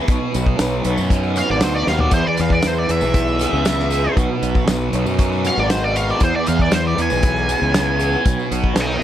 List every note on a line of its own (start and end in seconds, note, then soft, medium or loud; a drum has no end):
0.00 0.85 B3 medium
0.00 4.13 B3 medium
0.08 0.19 B1 loud
0.08 1.37 B2 medium
0.08 2.11 D#4 medium
0.08 2.11 F#4 medium
0.08 4.13 B4 medium
0.08 kick loud
0.08 closed hi-hat medium
0.08 tambourine soft
0.34 0.56 B1 loud
0.34 closed hi-hat medium
0.34 tambourine medium
0.46 kick medium
0.59 0.81 B1 medium
0.59 1.87 F#3 medium
0.59 snare loud
0.59 closed hi-hat medium
0.59 tambourine loud
0.85 0.96 B1 medium
0.85 2.89 B3 medium
0.85 closed hi-hat medium
0.85 tambourine soft
0.97 1.41 F#2 medium
0.97 tambourine medium
1.10 1.60 D#4 medium
1.10 kick loud
1.10 closed hi-hat medium
1.23 tambourine soft
1.36 1.86 F#4 medium
1.36 1.49 F5 medium
1.36 closed hi-hat medium
1.36 tambourine medium
1.50 1.60 G#1 medium
1.50 1.63 D5 medium
1.61 1.85 D2 medium
1.61 2.13 D#4 medium
1.61 1.75 C5 medium
1.61 snare loud
1.61 closed hi-hat loud
1.61 tambourine loud
1.75 1.87 D5 medium
1.87 2.10 D#2 medium
1.87 2.13 F#4 medium
1.87 2.00 F5 medium
1.87 snare medium
1.87 tambourine medium
1.99 2.13 D5 medium
1.99 floor tom medium
2.11 2.23 E2 loud
2.11 3.40 E2 medium
2.11 4.16 E4 medium
2.11 4.15 G#4 medium
2.11 2.27 C5 medium
2.11 kick loud
2.11 closed hi-hat loud
2.27 2.41 D5 medium
2.37 2.60 E2 loud
2.37 2.52 F5 medium
2.37 closed hi-hat medium
2.37 tambourine medium
2.50 2.67 D5 medium
2.50 kick medium
2.62 2.86 E2 medium
2.62 3.92 E3 medium
2.62 snare loud
2.62 closed hi-hat loud
2.62 tambourine loud
2.67 2.78 C5 medium
2.76 2.90 D5 medium
2.76 tambourine soft
2.89 3.00 E2 medium
2.89 4.93 B3 medium
2.89 4.14 E5 medium
2.89 closed hi-hat medium
3.01 3.45 B1 medium
3.01 tambourine medium
3.13 3.64 E4 medium
3.13 kick loud
3.13 closed hi-hat loud
3.13 tambourine soft
3.27 tambourine soft
3.39 3.90 G#4 medium
3.39 snare soft
3.39 closed hi-hat medium
3.39 tambourine medium
3.53 4.07 C#2 loud
3.65 4.17 E4 medium
3.65 snare loud
3.65 closed hi-hat medium
3.65 tambourine loud
3.80 snare soft
3.90 4.17 G#4 medium
3.90 closed hi-hat medium
3.90 tambourine medium
4.13 4.28 B1 loud
4.13 5.44 B2 medium
4.13 9.03 B3 medium
4.13 6.18 D#4 medium
4.13 6.17 F#4 medium
4.13 9.03 B4 medium
4.13 kick loud
4.13 closed hi-hat medium
4.42 4.64 B1 loud
4.42 closed hi-hat medium
4.42 tambourine medium
4.55 kick medium
4.55 tambourine soft
4.67 4.90 B1 medium
4.67 5.96 F#3 medium
4.67 snare loud
4.67 closed hi-hat medium
4.67 tambourine loud
4.93 5.04 B1 medium
4.93 6.98 B3 medium
4.93 closed hi-hat medium
5.06 5.49 F#2 medium
5.06 tambourine medium
5.18 5.69 D#4 medium
5.18 kick loud
5.18 closed hi-hat loud
5.18 tambourine soft
5.32 tambourine soft
5.45 5.95 F#4 medium
5.45 5.60 F5 loud
5.45 closed hi-hat medium
5.45 tambourine medium
5.57 6.11 G#1 loud
5.57 5.70 D5 medium
5.57 tambourine soft
5.70 6.21 D#4 medium
5.70 5.84 C5 medium
5.70 snare loud
5.70 closed hi-hat medium
5.70 tambourine medium
5.84 5.96 D5 medium
5.96 6.21 F#4 medium
5.96 6.10 F5 medium
5.96 closed hi-hat medium
5.96 tambourine medium
6.09 6.23 D5 loud
6.09 tambourine soft
6.20 7.49 E2 medium
6.20 6.32 E2 loud
6.20 8.23 E4 medium
6.20 8.23 G#4 medium
6.20 6.35 C5 medium
6.20 kick loud
6.20 closed hi-hat loud
6.36 6.47 D5 medium
6.46 6.69 E2 loud
6.46 6.62 F5 medium
6.46 closed hi-hat medium
6.46 tambourine medium
6.59 6.73 D5 medium
6.59 kick medium
6.71 6.94 E2 medium
6.71 8.00 E3 medium
6.71 6.85 C5 medium
6.71 snare loud
6.71 closed hi-hat medium
6.71 tambourine medium
6.86 6.99 D5 medium
6.86 tambourine soft
6.98 7.09 E2 medium
6.98 9.03 B3 medium
6.98 8.49 G#5 loud
6.98 closed hi-hat medium
7.10 7.54 B1 medium
7.10 tambourine medium
7.23 7.73 E4 medium
7.23 kick loud
7.23 closed hi-hat loud
7.36 tambourine soft
7.49 7.98 G#4 medium
7.49 closed hi-hat medium
7.49 tambourine medium
7.62 8.15 C#2 loud
7.62 tambourine soft
7.74 8.25 E4 medium
7.74 snare loud
7.74 closed hi-hat loud
7.74 tambourine loud
7.99 8.25 G#4 medium
7.99 closed hi-hat medium
7.99 tambourine medium
8.13 tambourine soft
8.25 8.36 B1 loud
8.25 9.03 B2 medium
8.25 9.03 D#4 medium
8.25 9.03 F#4 medium
8.25 kick loud
8.25 closed hi-hat loud
8.25 tambourine soft
8.39 tambourine soft
8.51 8.72 B1 medium
8.51 closed hi-hat medium
8.51 tambourine medium
8.64 kick medium
8.76 8.98 B1 loud
8.76 9.03 F#3 medium
8.76 snare loud
8.76 closed hi-hat medium
8.76 tambourine loud
8.80 9.03 D#5 medium
8.80 9.03 G5 medium
8.91 tambourine soft